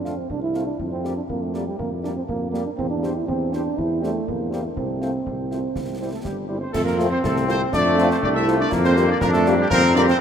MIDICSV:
0, 0, Header, 1, 7, 480
1, 0, Start_track
1, 0, Key_signature, -1, "major"
1, 0, Tempo, 495868
1, 767, Time_signature, 2, 2, 24, 8
1, 9882, End_track
2, 0, Start_track
2, 0, Title_t, "Trumpet section"
2, 0, Program_c, 0, 61
2, 48, Note_on_c, 0, 77, 40
2, 134, Note_off_c, 0, 77, 0
2, 525, Note_on_c, 0, 77, 44
2, 612, Note_off_c, 0, 77, 0
2, 1006, Note_on_c, 0, 74, 42
2, 1093, Note_off_c, 0, 74, 0
2, 1487, Note_on_c, 0, 74, 45
2, 1573, Note_off_c, 0, 74, 0
2, 1973, Note_on_c, 0, 74, 45
2, 2059, Note_off_c, 0, 74, 0
2, 2458, Note_on_c, 0, 74, 46
2, 2542, Note_off_c, 0, 74, 0
2, 2936, Note_on_c, 0, 72, 47
2, 3021, Note_off_c, 0, 72, 0
2, 3416, Note_on_c, 0, 72, 53
2, 3502, Note_off_c, 0, 72, 0
2, 3902, Note_on_c, 0, 72, 49
2, 3986, Note_off_c, 0, 72, 0
2, 4376, Note_on_c, 0, 72, 44
2, 4461, Note_off_c, 0, 72, 0
2, 4854, Note_on_c, 0, 72, 44
2, 4939, Note_off_c, 0, 72, 0
2, 5330, Note_on_c, 0, 72, 41
2, 5416, Note_off_c, 0, 72, 0
2, 5817, Note_on_c, 0, 72, 68
2, 5818, Note_off_c, 0, 72, 0
2, 5818, Note_on_c, 0, 72, 37
2, 5903, Note_off_c, 0, 72, 0
2, 5941, Note_on_c, 0, 69, 66
2, 5993, Note_off_c, 0, 69, 0
2, 6041, Note_on_c, 0, 67, 51
2, 6151, Note_off_c, 0, 67, 0
2, 6272, Note_on_c, 0, 72, 37
2, 6273, Note_on_c, 0, 67, 66
2, 6331, Note_off_c, 0, 67, 0
2, 6362, Note_off_c, 0, 72, 0
2, 6399, Note_on_c, 0, 72, 68
2, 6507, Note_on_c, 0, 69, 108
2, 6516, Note_off_c, 0, 72, 0
2, 6566, Note_off_c, 0, 69, 0
2, 6629, Note_on_c, 0, 70, 93
2, 6741, Note_off_c, 0, 70, 0
2, 6892, Note_on_c, 0, 72, 96
2, 6945, Note_off_c, 0, 72, 0
2, 7006, Note_on_c, 0, 69, 94
2, 7115, Note_off_c, 0, 69, 0
2, 7245, Note_on_c, 0, 72, 111
2, 7354, Note_off_c, 0, 72, 0
2, 7487, Note_on_c, 0, 74, 110
2, 7822, Note_off_c, 0, 74, 0
2, 7844, Note_on_c, 0, 72, 96
2, 7899, Note_off_c, 0, 72, 0
2, 7960, Note_on_c, 0, 74, 106
2, 8016, Note_off_c, 0, 74, 0
2, 8078, Note_on_c, 0, 76, 106
2, 8188, Note_off_c, 0, 76, 0
2, 8324, Note_on_c, 0, 74, 109
2, 8432, Note_off_c, 0, 74, 0
2, 8556, Note_on_c, 0, 72, 102
2, 8784, Note_off_c, 0, 72, 0
2, 8811, Note_on_c, 0, 74, 110
2, 8864, Note_off_c, 0, 74, 0
2, 8921, Note_on_c, 0, 70, 113
2, 8976, Note_off_c, 0, 70, 0
2, 9034, Note_on_c, 0, 69, 106
2, 9144, Note_off_c, 0, 69, 0
2, 9290, Note_on_c, 0, 67, 98
2, 9342, Note_off_c, 0, 67, 0
2, 9383, Note_on_c, 0, 70, 127
2, 9616, Note_off_c, 0, 70, 0
2, 9630, Note_on_c, 0, 74, 127
2, 9687, Note_off_c, 0, 74, 0
2, 9765, Note_on_c, 0, 72, 116
2, 9819, Note_off_c, 0, 72, 0
2, 9882, End_track
3, 0, Start_track
3, 0, Title_t, "Euphonium"
3, 0, Program_c, 1, 58
3, 0, Note_on_c, 1, 62, 69
3, 170, Note_on_c, 1, 60, 56
3, 185, Note_off_c, 1, 62, 0
3, 288, Note_off_c, 1, 60, 0
3, 299, Note_on_c, 1, 62, 62
3, 405, Note_off_c, 1, 62, 0
3, 410, Note_on_c, 1, 64, 71
3, 632, Note_off_c, 1, 64, 0
3, 637, Note_on_c, 1, 62, 62
3, 747, Note_off_c, 1, 62, 0
3, 890, Note_on_c, 1, 60, 64
3, 1112, Note_off_c, 1, 60, 0
3, 1128, Note_on_c, 1, 62, 57
3, 1182, Note_off_c, 1, 62, 0
3, 1256, Note_on_c, 1, 58, 58
3, 1373, Note_on_c, 1, 57, 63
3, 1387, Note_off_c, 1, 58, 0
3, 1611, Note_off_c, 1, 57, 0
3, 1617, Note_on_c, 1, 55, 55
3, 1724, Note_off_c, 1, 55, 0
3, 1733, Note_on_c, 1, 58, 70
3, 1840, Note_off_c, 1, 58, 0
3, 1970, Note_on_c, 1, 62, 66
3, 2024, Note_off_c, 1, 62, 0
3, 2098, Note_on_c, 1, 60, 61
3, 2150, Note_off_c, 1, 60, 0
3, 2211, Note_on_c, 1, 58, 68
3, 2430, Note_off_c, 1, 58, 0
3, 2436, Note_on_c, 1, 58, 71
3, 2554, Note_off_c, 1, 58, 0
3, 2572, Note_on_c, 1, 62, 66
3, 2625, Note_off_c, 1, 62, 0
3, 2686, Note_on_c, 1, 60, 75
3, 2799, Note_off_c, 1, 60, 0
3, 2806, Note_on_c, 1, 62, 76
3, 3062, Note_on_c, 1, 64, 68
3, 3077, Note_off_c, 1, 62, 0
3, 3163, Note_off_c, 1, 64, 0
3, 3168, Note_on_c, 1, 60, 74
3, 3417, Note_on_c, 1, 62, 78
3, 3432, Note_off_c, 1, 60, 0
3, 3663, Note_on_c, 1, 64, 83
3, 3678, Note_off_c, 1, 62, 0
3, 3897, Note_off_c, 1, 64, 0
3, 3905, Note_on_c, 1, 57, 69
3, 4147, Note_on_c, 1, 58, 60
3, 4162, Note_off_c, 1, 57, 0
3, 4376, Note_off_c, 1, 58, 0
3, 4382, Note_on_c, 1, 58, 69
3, 4488, Note_off_c, 1, 58, 0
3, 4617, Note_on_c, 1, 60, 60
3, 5775, Note_off_c, 1, 60, 0
3, 5800, Note_on_c, 1, 60, 65
3, 5917, Note_off_c, 1, 60, 0
3, 5925, Note_on_c, 1, 57, 48
3, 5981, Note_off_c, 1, 57, 0
3, 6043, Note_on_c, 1, 55, 52
3, 6269, Note_off_c, 1, 55, 0
3, 6279, Note_on_c, 1, 55, 72
3, 6384, Note_on_c, 1, 60, 58
3, 6399, Note_off_c, 1, 55, 0
3, 6515, Note_on_c, 1, 57, 98
3, 6529, Note_off_c, 1, 60, 0
3, 6616, Note_off_c, 1, 57, 0
3, 6622, Note_on_c, 1, 58, 81
3, 6858, Note_off_c, 1, 58, 0
3, 6872, Note_on_c, 1, 60, 75
3, 7008, Note_on_c, 1, 57, 83
3, 7023, Note_off_c, 1, 60, 0
3, 7230, Note_off_c, 1, 57, 0
3, 7236, Note_on_c, 1, 60, 89
3, 7483, Note_on_c, 1, 62, 99
3, 7497, Note_off_c, 1, 60, 0
3, 7844, Note_on_c, 1, 60, 89
3, 7859, Note_off_c, 1, 62, 0
3, 7957, Note_on_c, 1, 62, 104
3, 7971, Note_off_c, 1, 60, 0
3, 8084, Note_on_c, 1, 64, 100
3, 8098, Note_off_c, 1, 62, 0
3, 8311, Note_off_c, 1, 64, 0
3, 8317, Note_on_c, 1, 62, 99
3, 8427, Note_off_c, 1, 62, 0
3, 8564, Note_on_c, 1, 60, 106
3, 8672, Note_off_c, 1, 60, 0
3, 8792, Note_on_c, 1, 62, 88
3, 8849, Note_off_c, 1, 62, 0
3, 8913, Note_on_c, 1, 58, 106
3, 8970, Note_off_c, 1, 58, 0
3, 9032, Note_on_c, 1, 57, 105
3, 9261, Note_off_c, 1, 57, 0
3, 9270, Note_on_c, 1, 55, 89
3, 9388, Note_off_c, 1, 55, 0
3, 9399, Note_on_c, 1, 58, 100
3, 9508, Note_off_c, 1, 58, 0
3, 9630, Note_on_c, 1, 62, 104
3, 9687, Note_off_c, 1, 62, 0
3, 9746, Note_on_c, 1, 60, 93
3, 9804, Note_off_c, 1, 60, 0
3, 9882, End_track
4, 0, Start_track
4, 0, Title_t, "French horn section"
4, 0, Program_c, 2, 60
4, 43, Note_on_c, 2, 65, 40
4, 44, Note_on_c, 2, 57, 43
4, 47, Note_on_c, 2, 60, 44
4, 130, Note_off_c, 2, 65, 0
4, 131, Note_off_c, 2, 57, 0
4, 133, Note_off_c, 2, 60, 0
4, 526, Note_on_c, 2, 60, 45
4, 527, Note_on_c, 2, 57, 42
4, 527, Note_on_c, 2, 65, 44
4, 612, Note_off_c, 2, 60, 0
4, 613, Note_off_c, 2, 57, 0
4, 614, Note_off_c, 2, 65, 0
4, 1008, Note_on_c, 2, 55, 46
4, 1009, Note_on_c, 2, 58, 49
4, 1010, Note_on_c, 2, 67, 46
4, 1094, Note_off_c, 2, 55, 0
4, 1095, Note_off_c, 2, 58, 0
4, 1096, Note_off_c, 2, 67, 0
4, 1486, Note_on_c, 2, 67, 46
4, 1489, Note_on_c, 2, 58, 45
4, 1491, Note_on_c, 2, 55, 49
4, 1573, Note_off_c, 2, 67, 0
4, 1575, Note_off_c, 2, 58, 0
4, 1576, Note_off_c, 2, 55, 0
4, 1969, Note_on_c, 2, 55, 48
4, 1969, Note_on_c, 2, 58, 49
4, 1972, Note_on_c, 2, 67, 53
4, 2055, Note_off_c, 2, 55, 0
4, 2055, Note_off_c, 2, 58, 0
4, 2057, Note_off_c, 2, 67, 0
4, 2453, Note_on_c, 2, 55, 55
4, 2453, Note_on_c, 2, 58, 53
4, 2455, Note_on_c, 2, 67, 53
4, 2538, Note_off_c, 2, 55, 0
4, 2539, Note_off_c, 2, 58, 0
4, 2540, Note_off_c, 2, 67, 0
4, 2929, Note_on_c, 2, 55, 52
4, 2929, Note_on_c, 2, 60, 52
4, 2930, Note_on_c, 2, 67, 54
4, 3015, Note_off_c, 2, 55, 0
4, 3016, Note_off_c, 2, 60, 0
4, 3016, Note_off_c, 2, 67, 0
4, 3411, Note_on_c, 2, 55, 49
4, 3413, Note_on_c, 2, 67, 57
4, 3414, Note_on_c, 2, 60, 53
4, 3497, Note_off_c, 2, 55, 0
4, 3499, Note_off_c, 2, 60, 0
4, 3499, Note_off_c, 2, 67, 0
4, 3888, Note_on_c, 2, 55, 55
4, 3888, Note_on_c, 2, 60, 51
4, 3889, Note_on_c, 2, 67, 53
4, 3975, Note_off_c, 2, 55, 0
4, 3975, Note_off_c, 2, 60, 0
4, 3976, Note_off_c, 2, 67, 0
4, 4364, Note_on_c, 2, 55, 49
4, 4365, Note_on_c, 2, 60, 51
4, 4365, Note_on_c, 2, 67, 47
4, 4452, Note_off_c, 2, 55, 0
4, 4453, Note_off_c, 2, 60, 0
4, 4453, Note_off_c, 2, 67, 0
4, 4854, Note_on_c, 2, 65, 45
4, 4855, Note_on_c, 2, 57, 45
4, 4855, Note_on_c, 2, 60, 43
4, 4940, Note_off_c, 2, 57, 0
4, 4940, Note_off_c, 2, 60, 0
4, 4940, Note_off_c, 2, 65, 0
4, 5330, Note_on_c, 2, 60, 39
4, 5331, Note_on_c, 2, 57, 39
4, 5331, Note_on_c, 2, 65, 43
4, 5416, Note_off_c, 2, 60, 0
4, 5418, Note_off_c, 2, 57, 0
4, 5418, Note_off_c, 2, 65, 0
4, 5808, Note_on_c, 2, 60, 39
4, 5810, Note_on_c, 2, 55, 43
4, 5810, Note_on_c, 2, 64, 42
4, 5895, Note_off_c, 2, 60, 0
4, 5896, Note_off_c, 2, 64, 0
4, 5897, Note_off_c, 2, 55, 0
4, 6278, Note_on_c, 2, 64, 42
4, 6281, Note_on_c, 2, 55, 38
4, 6281, Note_on_c, 2, 60, 38
4, 6367, Note_off_c, 2, 64, 0
4, 6369, Note_off_c, 2, 60, 0
4, 6370, Note_off_c, 2, 55, 0
4, 6760, Note_on_c, 2, 65, 69
4, 6762, Note_on_c, 2, 60, 73
4, 6763, Note_on_c, 2, 57, 75
4, 6848, Note_off_c, 2, 65, 0
4, 6850, Note_off_c, 2, 60, 0
4, 6851, Note_off_c, 2, 57, 0
4, 7242, Note_on_c, 2, 65, 77
4, 7244, Note_on_c, 2, 60, 72
4, 7245, Note_on_c, 2, 57, 70
4, 7330, Note_off_c, 2, 65, 0
4, 7332, Note_off_c, 2, 57, 0
4, 7332, Note_off_c, 2, 60, 0
4, 7715, Note_on_c, 2, 57, 79
4, 7715, Note_on_c, 2, 65, 81
4, 7720, Note_on_c, 2, 60, 85
4, 7804, Note_off_c, 2, 65, 0
4, 7805, Note_off_c, 2, 57, 0
4, 7808, Note_off_c, 2, 60, 0
4, 8203, Note_on_c, 2, 57, 86
4, 8203, Note_on_c, 2, 60, 79
4, 8203, Note_on_c, 2, 65, 80
4, 8290, Note_off_c, 2, 57, 0
4, 8290, Note_off_c, 2, 60, 0
4, 8290, Note_off_c, 2, 65, 0
4, 8683, Note_on_c, 2, 67, 81
4, 8687, Note_on_c, 2, 55, 85
4, 8687, Note_on_c, 2, 58, 84
4, 8770, Note_off_c, 2, 67, 0
4, 8773, Note_off_c, 2, 55, 0
4, 8773, Note_off_c, 2, 58, 0
4, 9161, Note_on_c, 2, 55, 88
4, 9161, Note_on_c, 2, 58, 83
4, 9163, Note_on_c, 2, 67, 84
4, 9248, Note_off_c, 2, 55, 0
4, 9248, Note_off_c, 2, 58, 0
4, 9250, Note_off_c, 2, 67, 0
4, 9645, Note_on_c, 2, 55, 89
4, 9645, Note_on_c, 2, 58, 95
4, 9645, Note_on_c, 2, 67, 93
4, 9731, Note_off_c, 2, 55, 0
4, 9731, Note_off_c, 2, 58, 0
4, 9731, Note_off_c, 2, 67, 0
4, 9882, End_track
5, 0, Start_track
5, 0, Title_t, "Trombone section"
5, 0, Program_c, 3, 61
5, 6525, Note_on_c, 3, 60, 97
5, 7447, Note_off_c, 3, 60, 0
5, 7483, Note_on_c, 3, 57, 95
5, 8405, Note_off_c, 3, 57, 0
5, 8424, Note_on_c, 3, 58, 109
5, 8914, Note_off_c, 3, 58, 0
5, 8922, Note_on_c, 3, 62, 95
5, 9399, Note_on_c, 3, 60, 114
5, 9403, Note_off_c, 3, 62, 0
5, 9847, Note_off_c, 3, 60, 0
5, 9882, End_track
6, 0, Start_track
6, 0, Title_t, "Tuba"
6, 0, Program_c, 4, 58
6, 0, Note_on_c, 4, 41, 46
6, 205, Note_off_c, 4, 41, 0
6, 290, Note_on_c, 4, 36, 45
6, 688, Note_off_c, 4, 36, 0
6, 765, Note_on_c, 4, 41, 54
6, 1167, Note_off_c, 4, 41, 0
6, 1243, Note_on_c, 4, 41, 47
6, 1646, Note_off_c, 4, 41, 0
6, 1729, Note_on_c, 4, 41, 51
6, 2129, Note_off_c, 4, 41, 0
6, 2213, Note_on_c, 4, 41, 50
6, 2569, Note_off_c, 4, 41, 0
6, 2689, Note_on_c, 4, 40, 57
6, 3089, Note_off_c, 4, 40, 0
6, 3164, Note_on_c, 4, 40, 58
6, 3567, Note_off_c, 4, 40, 0
6, 3648, Note_on_c, 4, 40, 62
6, 4049, Note_off_c, 4, 40, 0
6, 4135, Note_on_c, 4, 40, 53
6, 4533, Note_off_c, 4, 40, 0
6, 4613, Note_on_c, 4, 36, 53
6, 5012, Note_off_c, 4, 36, 0
6, 5091, Note_on_c, 4, 36, 48
6, 5491, Note_off_c, 4, 36, 0
6, 5567, Note_on_c, 4, 36, 47
6, 5969, Note_off_c, 4, 36, 0
6, 6046, Note_on_c, 4, 31, 51
6, 6448, Note_off_c, 4, 31, 0
6, 6519, Note_on_c, 4, 41, 78
6, 6924, Note_off_c, 4, 41, 0
6, 7000, Note_on_c, 4, 36, 74
6, 7404, Note_off_c, 4, 36, 0
6, 7480, Note_on_c, 4, 41, 84
6, 7883, Note_off_c, 4, 41, 0
6, 7960, Note_on_c, 4, 36, 83
6, 8363, Note_off_c, 4, 36, 0
6, 8443, Note_on_c, 4, 41, 93
6, 8844, Note_off_c, 4, 41, 0
6, 8915, Note_on_c, 4, 41, 85
6, 9319, Note_off_c, 4, 41, 0
6, 9395, Note_on_c, 4, 41, 97
6, 9798, Note_off_c, 4, 41, 0
6, 9882, End_track
7, 0, Start_track
7, 0, Title_t, "Drums"
7, 51, Note_on_c, 9, 38, 30
7, 148, Note_off_c, 9, 38, 0
7, 288, Note_on_c, 9, 35, 55
7, 384, Note_off_c, 9, 35, 0
7, 525, Note_on_c, 9, 38, 33
7, 622, Note_off_c, 9, 38, 0
7, 768, Note_on_c, 9, 35, 63
7, 865, Note_off_c, 9, 35, 0
7, 1014, Note_on_c, 9, 38, 32
7, 1110, Note_off_c, 9, 38, 0
7, 1253, Note_on_c, 9, 35, 64
7, 1349, Note_off_c, 9, 35, 0
7, 1490, Note_on_c, 9, 38, 33
7, 1587, Note_off_c, 9, 38, 0
7, 1733, Note_on_c, 9, 35, 63
7, 1830, Note_off_c, 9, 35, 0
7, 1978, Note_on_c, 9, 38, 35
7, 2075, Note_off_c, 9, 38, 0
7, 2215, Note_on_c, 9, 35, 60
7, 2311, Note_off_c, 9, 35, 0
7, 2461, Note_on_c, 9, 38, 35
7, 2558, Note_off_c, 9, 38, 0
7, 2698, Note_on_c, 9, 35, 69
7, 2795, Note_off_c, 9, 35, 0
7, 2935, Note_on_c, 9, 38, 36
7, 3032, Note_off_c, 9, 38, 0
7, 3179, Note_on_c, 9, 35, 62
7, 3276, Note_off_c, 9, 35, 0
7, 3418, Note_on_c, 9, 38, 36
7, 3515, Note_off_c, 9, 38, 0
7, 3662, Note_on_c, 9, 35, 62
7, 3759, Note_off_c, 9, 35, 0
7, 3906, Note_on_c, 9, 38, 34
7, 4003, Note_off_c, 9, 38, 0
7, 4143, Note_on_c, 9, 35, 65
7, 4240, Note_off_c, 9, 35, 0
7, 4381, Note_on_c, 9, 38, 36
7, 4478, Note_off_c, 9, 38, 0
7, 4616, Note_on_c, 9, 35, 68
7, 4713, Note_off_c, 9, 35, 0
7, 4858, Note_on_c, 9, 38, 35
7, 4954, Note_off_c, 9, 38, 0
7, 5096, Note_on_c, 9, 35, 62
7, 5193, Note_off_c, 9, 35, 0
7, 5337, Note_on_c, 9, 38, 32
7, 5434, Note_off_c, 9, 38, 0
7, 5572, Note_on_c, 9, 35, 63
7, 5572, Note_on_c, 9, 38, 46
7, 5668, Note_off_c, 9, 35, 0
7, 5668, Note_off_c, 9, 38, 0
7, 6048, Note_on_c, 9, 35, 60
7, 6048, Note_on_c, 9, 38, 46
7, 6145, Note_off_c, 9, 35, 0
7, 6145, Note_off_c, 9, 38, 0
7, 6528, Note_on_c, 9, 35, 84
7, 6528, Note_on_c, 9, 38, 79
7, 6528, Note_on_c, 9, 49, 55
7, 6625, Note_off_c, 9, 35, 0
7, 6625, Note_off_c, 9, 38, 0
7, 6625, Note_off_c, 9, 49, 0
7, 6651, Note_on_c, 9, 38, 51
7, 6747, Note_off_c, 9, 38, 0
7, 6770, Note_on_c, 9, 38, 60
7, 6867, Note_off_c, 9, 38, 0
7, 7009, Note_on_c, 9, 35, 84
7, 7009, Note_on_c, 9, 38, 82
7, 7106, Note_off_c, 9, 35, 0
7, 7106, Note_off_c, 9, 38, 0
7, 7129, Note_on_c, 9, 38, 52
7, 7226, Note_off_c, 9, 38, 0
7, 7247, Note_on_c, 9, 38, 60
7, 7344, Note_off_c, 9, 38, 0
7, 7483, Note_on_c, 9, 35, 84
7, 7483, Note_on_c, 9, 38, 78
7, 7580, Note_off_c, 9, 35, 0
7, 7580, Note_off_c, 9, 38, 0
7, 7728, Note_on_c, 9, 38, 58
7, 7824, Note_off_c, 9, 38, 0
7, 7847, Note_on_c, 9, 38, 52
7, 7944, Note_off_c, 9, 38, 0
7, 7967, Note_on_c, 9, 35, 79
7, 8064, Note_off_c, 9, 35, 0
7, 8204, Note_on_c, 9, 38, 61
7, 8301, Note_off_c, 9, 38, 0
7, 8440, Note_on_c, 9, 35, 85
7, 8440, Note_on_c, 9, 38, 82
7, 8440, Note_on_c, 9, 49, 34
7, 8537, Note_off_c, 9, 35, 0
7, 8537, Note_off_c, 9, 38, 0
7, 8537, Note_off_c, 9, 49, 0
7, 8558, Note_on_c, 9, 38, 57
7, 8655, Note_off_c, 9, 38, 0
7, 8678, Note_on_c, 9, 38, 62
7, 8775, Note_off_c, 9, 38, 0
7, 8917, Note_on_c, 9, 35, 89
7, 8917, Note_on_c, 9, 38, 83
7, 9014, Note_off_c, 9, 35, 0
7, 9014, Note_off_c, 9, 38, 0
7, 9036, Note_on_c, 9, 38, 57
7, 9133, Note_off_c, 9, 38, 0
7, 9156, Note_on_c, 9, 38, 60
7, 9253, Note_off_c, 9, 38, 0
7, 9397, Note_on_c, 9, 35, 98
7, 9397, Note_on_c, 9, 38, 88
7, 9494, Note_off_c, 9, 35, 0
7, 9494, Note_off_c, 9, 38, 0
7, 9636, Note_on_c, 9, 38, 63
7, 9733, Note_off_c, 9, 38, 0
7, 9760, Note_on_c, 9, 38, 60
7, 9857, Note_off_c, 9, 38, 0
7, 9882, End_track
0, 0, End_of_file